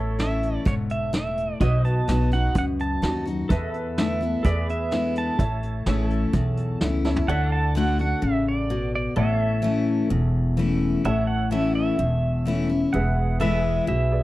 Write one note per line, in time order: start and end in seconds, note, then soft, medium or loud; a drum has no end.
0.00 0.56 A1 medium
0.00 0.61 A2 medium
0.00 1.57 A4 medium
0.00 1.59 A4 medium
0.00 1.57 C#5 medium
0.00 1.60 C#5 medium
0.00 1.57 E5 medium
0.00 1.60 E5 medium
0.19 0.64 E3 medium
0.19 0.65 A3 medium
0.19 0.65 C#4 medium
0.19 0.65 E4 medium
0.19 0.64 E5 medium
0.19 snare loud
0.19 closed hi-hat medium
0.43 closed hi-hat medium
0.65 1.51 E1 medium
0.65 1.11 G#2 medium
0.65 0.74 C#5 medium
0.65 kick loud
0.65 closed hi-hat medium
0.90 1.13 E5 medium
0.90 closed hi-hat medium
1.13 1.58 A2 medium
1.13 1.61 E5 medium
1.13 snare loud
1.13 closed hi-hat medium
1.37 closed hi-hat medium
1.60 2.03 B1 medium
1.60 2.51 B2 medium
1.60 3.47 F#4 medium
1.60 3.48 F#4 medium
1.60 3.47 B4 medium
1.60 1.87 C#5 medium
1.60 1.86 D#5 loud
1.60 3.47 D#5 medium
1.60 1.83 E5 medium
1.60 kick loud
1.60 closed hi-hat medium
1.83 3.49 B4 medium
1.83 3.49 D#5 medium
1.83 2.33 A5 loud
1.83 closed hi-hat medium
2.08 2.48 B1 medium
2.08 2.31 F#3 medium
2.08 2.31 B3 medium
2.08 2.32 D#4 medium
2.08 2.30 F#4 medium
2.08 snare loud
2.08 closed hi-hat medium
2.32 2.56 D#4 soft
2.32 2.55 F#4 medium
2.32 2.57 F#5 medium
2.32 closed hi-hat medium
2.55 2.96 C#2 medium
2.55 3.45 F#2 medium
2.55 2.64 F#5 medium
2.55 kick loud
2.55 closed hi-hat medium
2.79 3.24 A5 medium
2.79 closed hi-hat medium
3.02 3.43 D#2 medium
3.02 3.25 F#3 medium
3.02 3.25 B3 medium
3.02 3.26 D#4 medium
3.02 3.24 F#4 medium
3.02 snare loud
3.02 closed hi-hat medium
3.26 3.50 D#4 soft
3.26 3.49 F#4 medium
3.26 closed hi-hat medium
3.49 4.34 E2 medium
3.49 4.40 E2 medium
3.49 4.43 A4 medium
3.49 4.43 B4 medium
3.49 3.72 D#5 medium
3.49 4.43 E5 medium
3.49 kick loud
3.49 closed hi-hat medium
3.72 4.44 E5 medium
3.72 closed hi-hat medium
3.98 4.20 D3 medium
3.98 4.21 A3 medium
3.98 4.21 B3 medium
3.98 4.19 E4 medium
3.98 4.47 E5 medium
3.98 snare loud
3.98 closed hi-hat medium
4.21 4.45 B3 soft
4.21 4.44 E4 medium
4.21 closed hi-hat medium
4.43 5.29 E2 medium
4.43 5.34 E2 medium
4.43 5.37 G#4 medium
4.43 4.63 A4 medium
4.43 5.38 B4 medium
4.43 4.69 D5 medium
4.43 5.39 E5 medium
4.43 5.37 E5 medium
4.43 kick loud
4.43 closed hi-hat medium
4.63 5.37 G#4 medium
4.69 5.18 E5 medium
4.69 closed hi-hat medium
4.91 5.36 D3 soft
4.91 5.37 G#3 medium
4.91 5.37 B3 medium
4.91 5.38 E4 medium
4.91 snare loud
4.91 closed hi-hat medium
5.15 6.78 A5 medium
5.15 closed hi-hat medium
5.39 5.81 A1 medium
5.39 6.29 A2 medium
5.39 7.01 A4 medium
5.39 7.01 C#5 medium
5.39 7.01 E5 medium
5.39 kick medium
5.39 closed hi-hat medium
5.63 closed hi-hat medium
5.86 6.26 A1 medium
5.86 6.31 E3 medium
5.86 6.32 A3 medium
5.86 6.32 C#4 medium
5.86 6.33 E4 medium
5.86 6.08 G#4 medium
5.86 7.28 C#5 medium
5.86 7.28 E5 medium
5.86 snare loud
5.86 closed hi-hat medium
6.08 7.27 A4 medium
6.08 closed hi-hat medium
6.33 6.74 B1 medium
6.33 7.23 E2 medium
6.33 kick loud
6.33 closed hi-hat medium
6.57 closed hi-hat medium
6.81 7.21 C#2 medium
6.81 7.04 E3 medium
6.81 7.04 A3 medium
6.81 7.04 C#4 medium
6.81 7.04 E4 medium
6.81 snare loud
6.81 closed hi-hat medium
7.05 7.28 C#4 soft
7.05 7.27 E4 medium
7.05 7.27 A4 medium
7.05 7.28 C#5 soft
7.05 7.28 E5 medium
7.05 snare medium
7.16 floor tom medium
7.28 8.12 D2 medium
7.28 7.74 D3 medium
7.28 9.13 A4 medium
7.28 9.15 A4 medium
7.28 7.50 C#5 medium
7.28 9.13 D5 medium
7.28 7.56 E5 medium
7.28 7.52 F#5 loud
7.28 9.13 F#5 medium
7.50 9.16 D5 medium
7.50 7.76 A5 loud
7.56 9.17 F#5 medium
7.75 7.98 D3 medium
7.75 7.99 A3 medium
7.75 7.99 D4 medium
7.75 7.98 F#4 medium
7.75 8.00 F#5 medium
7.99 8.23 D4 soft
7.99 8.22 F#4 medium
7.99 8.24 F#5 loud
8.22 9.07 A1 medium
8.22 8.67 C#3 medium
8.22 8.47 E5 medium
8.48 8.91 D5 medium
8.70 9.15 B2 medium
8.95 9.16 D5 medium
9.16 10.01 A1 medium
9.16 10.06 A2 medium
9.16 12.90 A4 medium
9.16 11.02 A4 medium
9.16 11.02 C#5 medium
9.16 9.38 D5 medium
9.16 11.02 E5 medium
9.16 9.84 E5 medium
9.16 9.44 F#5 medium
9.38 12.91 C#5 medium
9.44 12.91 E5 medium
9.62 10.08 E3 medium
9.62 10.08 A3 medium
9.62 10.09 C#4 medium
9.62 10.09 E4 medium
10.10 10.95 E1 medium
10.10 11.00 E2 medium
10.57 11.02 E3 medium
10.57 11.03 A3 medium
10.57 11.03 C#4 medium
10.57 11.04 E4 medium
11.05 11.89 A1 medium
11.05 11.95 A2 medium
11.05 12.90 A4 medium
11.05 12.90 C#5 medium
11.05 11.30 E5 medium
11.05 12.90 F#5 medium
11.27 11.50 F#5 medium
11.51 11.97 E3 medium
11.51 11.97 A3 medium
11.51 11.97 C#4 medium
11.51 11.97 E4 medium
11.51 11.74 E5 medium
11.75 12.92 E5 loud
11.99 12.83 E1 medium
11.99 12.89 E2 medium
12.45 12.69 E3 medium
12.45 12.69 A3 medium
12.45 12.69 C#4 medium
12.45 12.68 E4 medium
12.69 12.93 C#4 soft
12.69 12.93 E4 medium
12.93 13.78 E1 medium
12.93 13.83 E2 medium
12.93 14.10 G#4 medium
12.93 14.10 B4 medium
12.93 14.10 E5 medium
12.93 13.40 F#5 medium
13.40 13.85 E3 medium
13.40 13.86 G#3 medium
13.40 13.86 B3 medium
13.40 13.86 E4 medium
13.40 13.61 A4 medium
13.40 14.23 B4 medium
13.40 13.87 E5 medium
13.40 14.23 E5 medium
13.61 14.23 G#4 medium
13.87 14.23 B1 medium
13.87 14.23 B2 medium
13.87 14.23 E5 medium
14.12 14.23 G#4 soft
14.12 14.23 B4 soft
14.12 14.23 D5 soft